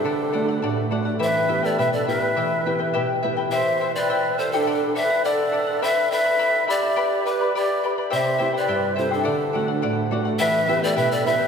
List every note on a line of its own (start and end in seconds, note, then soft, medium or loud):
0.00 0.87 D4 medium
0.00 0.88 A4 medium
0.05 0.61 D3 medium
0.05 0.31 A4 medium
0.05 0.32 D5 medium
0.05 0.32 F#5 medium
0.32 0.81 A3 soft
0.32 0.81 D4 soft
0.32 0.81 F#4 medium
0.32 0.47 A4 medium
0.32 0.48 D5 medium
0.32 0.47 F#5 medium
0.48 0.62 D5 soft
0.48 0.62 F#5 medium
0.62 1.19 A2 medium
0.62 0.90 A4 medium
0.62 0.91 D5 medium
0.62 0.91 F#5 medium
0.91 1.15 A3 medium
0.91 1.15 D4 soft
0.91 1.15 F#4 medium
0.91 1.06 A4 medium
0.91 1.05 D5 medium
0.91 1.04 F#5 medium
1.05 1.19 D5 soft
1.05 1.20 F#5 medium
1.19 1.77 E3 medium
1.19 1.48 E4 medium
1.19 1.49 G4 medium
1.19 1.48 B4 medium
1.19 1.28 C5 medium
1.19 1.47 E5 medium
1.19 1.48 G5 medium
1.23 1.67 B4 medium
1.23 1.66 E5 loud
1.48 1.95 B3 soft
1.48 1.63 E4 medium
1.48 1.96 E4 soft
1.48 1.96 G4 medium
1.48 1.62 B4 medium
1.48 1.63 E5 medium
1.48 1.61 G5 medium
1.62 1.78 E4 soft
1.62 1.81 A4 medium
1.62 1.78 B4 medium
1.62 1.81 D5 medium
1.62 1.78 G5 medium
1.78 2.35 B2 medium
1.78 2.07 E4 medium
1.78 2.07 G4 medium
1.78 2.07 B4 medium
1.78 1.93 B4 medium
1.78 2.06 E5 medium
1.78 1.92 E5 medium
1.78 2.07 G5 medium
1.93 2.07 A4 medium
1.93 2.06 D5 medium
2.07 2.31 B3 soft
2.07 2.22 E4 medium
2.07 2.31 E4 soft
2.07 2.31 G4 medium
2.07 2.20 A#4 medium
2.07 2.21 B4 medium
2.07 2.22 E5 medium
2.07 3.20 E5 loud
2.07 2.21 G5 medium
2.20 2.36 E4 soft
2.20 3.20 B4 medium
2.20 2.36 B4 soft
2.20 2.37 G5 medium
2.36 2.93 E3 medium
2.36 2.66 E4 medium
2.36 2.65 G4 medium
2.36 2.65 B4 medium
2.36 2.65 E5 medium
2.36 2.66 G5 medium
2.66 3.12 B3 medium
2.66 3.12 E4 soft
2.66 2.79 E4 medium
2.66 3.13 G4 medium
2.66 2.78 B4 medium
2.66 2.80 E5 medium
2.66 2.78 G5 medium
2.79 2.93 E4 medium
2.79 2.94 B4 medium
2.79 2.93 G5 medium
2.93 3.51 B2 medium
2.93 3.22 E4 medium
2.93 3.23 G4 medium
2.93 3.22 B4 medium
2.93 3.21 E5 medium
2.93 3.23 G5 medium
3.23 3.47 B3 soft
3.23 3.37 E4 medium
3.23 3.47 E4 soft
3.23 3.47 G4 soft
3.23 3.36 B4 medium
3.23 3.37 E5 medium
3.23 3.35 G5 medium
3.37 3.51 E4 soft
3.37 3.52 B4 medium
3.37 3.51 G5 medium
3.51 3.80 E4 medium
3.51 3.81 G4 medium
3.51 3.81 C5 medium
3.51 3.93 C5 medium
3.51 3.92 E5 loud
3.51 3.80 E5 medium
3.51 3.81 G5 medium
3.81 3.95 E4 medium
3.81 3.95 C5 medium
3.81 3.96 E5 medium
3.81 3.94 G5 medium
3.95 4.08 E4 medium
3.95 4.41 B4 medium
3.95 4.10 C5 medium
3.95 4.40 D5 medium
3.95 4.09 G5 medium
4.09 4.38 E4 medium
4.09 4.38 G4 medium
4.09 4.37 E5 medium
4.09 4.39 G5 medium
4.38 4.53 E4 medium
4.38 4.56 A4 medium
4.38 4.53 C5 medium
4.38 4.53 E5 medium
4.38 4.52 G5 medium
4.52 4.97 D4 medium
4.52 4.68 E4 soft
4.52 4.95 A4 loud
4.52 4.66 C5 soft
4.52 4.67 G5 medium
4.67 4.94 A4 medium
4.67 4.95 D5 medium
4.67 4.96 F#5 medium
4.95 5.10 A4 medium
4.95 5.27 B4 medium
4.95 5.11 D5 medium
4.95 5.26 E5 loud
4.95 5.09 F#5 medium
5.10 5.24 D5 soft
5.10 5.24 F#5 medium
5.24 5.51 A4 medium
5.24 5.84 A4 medium
5.24 5.85 D5 loud
5.24 5.52 D5 medium
5.24 5.53 F#5 medium
5.52 5.67 A4 medium
5.52 5.67 D5 medium
5.52 5.66 F#5 medium
5.67 5.82 D5 soft
5.67 5.82 F#5 medium
5.82 6.11 E4 medium
5.82 6.11 G4 medium
5.82 5.88 C5 medium
5.82 6.11 E5 medium
5.82 6.11 E5 loud
5.82 6.10 G5 medium
5.82 6.11 B5 medium
5.87 6.11 B4 medium
6.11 6.24 E4 medium
6.11 6.65 B4 medium
6.11 6.65 E5 loud
6.11 6.24 E5 medium
6.11 6.26 G5 medium
6.11 6.23 B5 medium
6.24 6.38 E4 soft
6.24 6.38 E5 medium
6.24 6.38 B5 medium
6.39 6.66 E4 medium
6.39 6.68 G4 medium
6.39 6.67 E5 medium
6.39 6.66 G5 medium
6.39 6.67 B5 medium
6.67 6.82 E4 medium
6.67 7.26 G4 medium
6.67 7.28 D5 loud
6.67 6.82 E5 medium
6.67 6.82 G5 medium
6.67 6.81 B5 medium
6.82 6.96 E4 soft
6.82 6.97 E5 soft
6.82 6.96 B5 soft
6.96 7.25 G4 medium
6.96 7.25 B4 medium
6.96 7.25 D5 medium
6.96 7.24 G5 medium
6.96 7.25 B5 medium
7.25 7.54 G4 medium
7.25 7.40 B4 medium
7.25 7.55 B4 medium
7.25 7.40 D5 medium
7.25 7.40 G5 medium
7.25 7.40 B5 medium
7.41 7.55 B4 soft
7.41 7.55 D5 medium
7.41 7.55 B5 medium
7.55 7.95 G4 medium
7.55 7.84 G4 medium
7.55 7.83 B4 medium
7.55 7.87 D5 medium
7.55 7.83 D5 medium
7.55 7.82 G5 medium
7.55 7.84 B5 medium
7.84 7.98 B4 medium
7.84 7.97 D5 medium
7.84 7.98 G5 medium
7.84 7.97 B5 medium
7.98 8.10 B4 soft
7.98 8.11 D5 medium
7.98 8.11 B5 medium
8.10 8.68 C3 medium
8.10 8.37 E4 medium
8.10 8.40 G4 medium
8.10 8.38 C5 medium
8.10 8.17 D5 medium
8.10 8.37 E5 medium
8.10 8.52 E5 loud
8.10 8.38 G5 medium
8.16 8.52 C5 medium
8.38 8.86 C4 soft
8.38 8.54 E4 medium
8.38 8.87 E4 soft
8.38 8.87 G4 medium
8.38 8.53 C5 medium
8.38 8.54 E5 medium
8.38 8.52 G5 medium
8.53 8.68 E4 soft
8.53 8.95 B4 medium
8.53 8.68 C5 medium
8.53 8.68 G5 medium
8.57 8.96 D5 medium
8.68 9.24 G2 medium
8.68 8.95 E4 medium
8.68 8.97 G4 medium
8.68 8.95 E5 medium
8.68 8.95 G5 medium
8.96 9.21 C4 soft
8.96 9.11 E4 medium
8.96 9.21 E4 soft
8.96 9.21 G4 medium
8.96 9.14 A4 medium
8.96 9.10 C5 medium
8.96 9.14 C5 medium
8.96 9.11 E5 medium
8.96 9.09 G5 medium
9.11 9.17 E4 medium
9.11 9.26 E4 soft
9.11 10.12 A4 medium
9.11 9.23 C5 medium
9.11 9.25 G5 medium
9.16 10.12 D4 medium
9.23 9.52 A4 medium
9.23 9.53 D5 medium
9.23 9.54 F#5 medium
9.27 9.82 D3 medium
9.53 10.01 A3 soft
9.53 10.01 D4 soft
9.53 10.01 F#4 medium
9.53 9.68 A4 medium
9.53 9.68 D5 medium
9.53 9.67 F#5 medium
9.68 9.82 D5 medium
9.68 9.82 F#5 medium
9.82 10.39 A2 medium
9.82 10.10 A4 medium
9.82 10.11 D5 medium
9.82 10.12 F#5 loud
10.11 10.34 A3 medium
10.11 10.35 D4 soft
10.11 10.35 F#4 medium
10.11 10.26 A4 medium
10.11 10.25 D5 medium
10.11 10.24 F#5 medium
10.25 10.40 D5 soft
10.25 10.39 F#5 medium
10.39 10.96 E3 medium
10.39 10.67 E4 medium
10.39 10.68 G4 medium
10.39 10.85 B4 medium
10.39 10.68 B4 loud
10.39 10.85 E5 loud
10.39 10.67 E5 medium
10.39 10.68 G5 medium
10.68 11.14 B3 soft
10.68 10.82 E4 medium
10.68 11.14 E4 soft
10.68 11.15 G4 medium
10.68 10.82 B4 medium
10.68 10.83 E5 medium
10.68 10.81 G5 medium
10.82 10.96 E4 soft
10.82 10.97 A4 medium
10.82 10.95 B4 medium
10.82 10.97 D5 medium
10.82 10.95 G5 medium
10.96 11.48 B2 medium
10.96 11.24 E4 medium
10.96 11.25 G4 medium
10.96 11.25 B4 medium
10.96 11.14 B4 medium
10.96 11.24 E5 medium
10.96 11.13 E5 medium
10.96 11.25 G5 medium
11.11 11.28 A4 medium
11.11 11.28 D5 medium
11.25 11.48 B3 soft
11.25 11.48 E4 soft
11.25 11.37 E4 medium
11.25 11.48 G4 medium
11.25 11.37 B4 medium
11.25 11.32 C5 medium
11.25 11.40 E5 medium
11.25 11.48 E5 loud
11.25 11.36 G5 medium
11.31 11.48 B4 medium
11.37 11.48 E4 soft
11.37 11.48 B4 soft
11.37 11.48 G5 medium